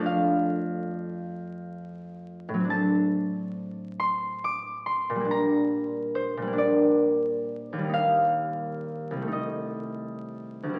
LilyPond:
<<
  \new Staff \with { instrumentName = "Harp" } { \time 6/8 \key d \minor \tempo 4. = 45 <f'' g''>2. | \key g \minor a''4. c'''8 d'''8 c'''8 | bes''4 c''8 d''4. | f''4. ees''4. | }
  \new Staff \with { instrumentName = "Harp" } { \clef bass \time 6/8 \key d \minor <f, f a d'>2. | \key g \minor <a, fis c' d'>2. | <bes, g bes d'>4. <bes, g bes d'>4. | <ees, g bes ees'>4. <c, g a ees'>4. | }
>>